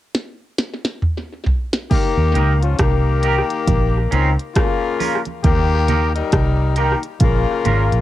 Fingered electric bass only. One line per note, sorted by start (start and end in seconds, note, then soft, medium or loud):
2.17 2.33 D#2 medium
2.35 2.74 C#2 medium
2.79 3.40 C2 medium
3.67 4.06 A#1 medium
4.12 4.35 C#2 medium
5.45 6.21 D#2 loud
6.33 6.94 C2 medium
7.21 7.44 A#1 loud
7.66 7.88 G#1 medium
7.92 8.01 A#1 medium